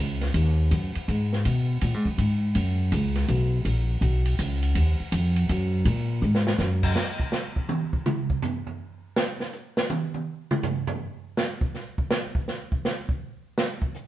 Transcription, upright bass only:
0.00 0.33 C#2 medium
0.34 0.70 D#2 medium
0.71 0.94 F#2 medium
0.96 muted upright bass stroke soft
1.08 1.44 G#2 medium
1.45 1.81 B2 medium
1.82 1.94 A#2 medium
1.94 2.06 G#2 medium
2.06 2.17 F#2 medium
2.18 2.54 G#2 medium
2.55 2.91 F#2 medium
2.92 3.28 C#2 medium
3.28 3.64 B1 medium
3.65 4.01 A#1 medium
4.01 4.37 B1 medium
4.39 4.74 C#2 medium
4.75 4.98 D#2 medium
5.00 muted upright bass stroke soft
5.12 5.48 F2 loud
5.50 5.85 F#2 medium
5.85 6.21 A#2 medium
6.22 6.58 G#2 medium
6.58 6.95 F#2 medium

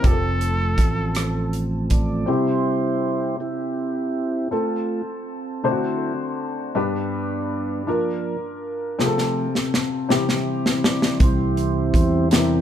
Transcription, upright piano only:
0.02 2.23 C4 medium
0.02 2.24 F4 soft
0.02 0.11 G4 soft
0.11 2.28 A4 medium
2.26 3.36 C3 medium
2.26 4.47 C4 medium
2.26 4.47 E4 soft
2.26 4.48 G4 medium
4.51 5.62 C4 medium
4.51 5.64 F4 medium
4.51 5.64 A4 medium
5.64 6.72 D3 medium
5.64 6.75 A3 medium
5.64 6.75 C4 medium
5.64 6.73 D4 medium
5.64 5.71 E4 soft
5.64 6.76 C5 medium
5.71 6.79 F#4 medium
6.75 7.83 G2 medium
6.75 7.86 D4 medium
6.75 7.87 G4 medium
6.75 7.87 B4 medium
7.87 8.98 D4 medium
7.87 8.97 F4 medium
7.87 8.99 A#4 medium
8.99 10.06 C3 medium
8.99 10.07 C4 medium
8.99 10.10 F4 medium
8.99 9.05 G#4 medium
9.06 10.13 A4 medium
10.09 11.16 C3 medium
10.09 12.27 C4 medium
10.09 12.27 E4 medium
10.09 12.28 G4 medium
12.31 12.61 C3 medium
12.31 12.61 C4 medium
12.31 12.38 D4 soft
12.31 12.61 G4 medium
12.38 12.61 E4 medium

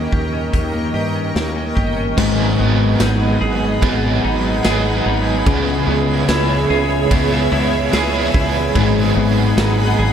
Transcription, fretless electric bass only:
0.13 0.49 D#2 medium
0.53 0.90 D#2 medium
0.94 1.30 G2 medium
1.35 1.72 D#2 medium
1.77 2.13 G1 medium
2.18 2.54 G#1 loud
2.60 2.95 G#1 loud
3.01 3.37 G#1 medium
3.41 3.77 G#1 loud
3.82 4.18 G#1 loud
4.24 4.60 G#1 loud
4.65 5.01 G#1 loud
5.06 5.42 G#1 medium
5.47 5.83 C#2 medium
5.87 6.24 C#2 medium
6.29 6.65 C#2 loud
6.70 7.06 C#2 loud
7.11 7.47 C#2 loud
7.52 7.88 C#2 loud
7.93 8.29 C#2 loud
8.34 8.70 C#2 loud
8.76 9.12 G#1 loud
9.16 9.52 G#1 loud
9.57 9.93 G#1 loud
9.99 10.13 G#1 loud

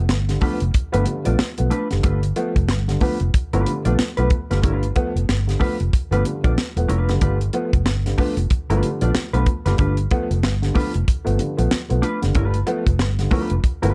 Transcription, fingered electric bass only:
0.00 0.10 F1 medium
0.10 0.36 G1 medium
0.62 0.72 F1 medium
0.75 muted fingered electric bass stroke medium
0.94 1.05 G1 medium
1.27 1.37 A#1 medium
1.40 muted fingered electric bass stroke soft
1.60 1.70 B1 medium
1.93 2.03 F#1 medium
2.04 2.31 G1 loud
2.56 2.70 F1 loud
2.70 2.96 G1 loud
3.21 3.31 F1 loud
3.53 3.64 G1 medium
3.86 3.96 A#1 medium
4.00 muted fingered electric bass stroke soft
4.18 4.29 B1 medium
4.51 4.64 F#1 medium
4.64 4.90 G1 medium
5.15 5.26 F1 medium
5.29 5.55 G1 medium
5.81 5.91 F1 medium
6.11 6.22 G1 loud
6.44 6.55 A#1 medium
6.76 6.87 E1 loud
6.89 7.08 F1 medium
7.08 7.19 F#1 loud
7.21 7.48 G1 loud
7.73 7.85 F1 medium
7.85 8.12 G1 medium
8.37 8.48 F1 medium
8.51 muted fingered electric bass stroke soft
8.70 8.80 G1 loud
9.02 9.13 A#1 medium
9.16 muted fingered electric bass stroke soft
9.33 9.44 B1 medium
9.66 9.76 F#1 medium
9.79 10.05 G1 loud
10.31 10.44 F1 loud
10.44 10.70 G1 medium
10.95 11.06 F1 medium
11.08 muted fingered electric bass stroke soft
11.27 11.37 G1 medium
11.59 11.69 A#1 medium
11.91 12.01 B1 medium
12.23 12.34 F#1 medium
12.35 12.61 G1 loud
12.87 13.01 F1 medium
13.01 13.27 G1 loud
13.51 13.62 F1 medium
13.63 muted fingered electric bass stroke soft
13.83 13.94 G1 medium

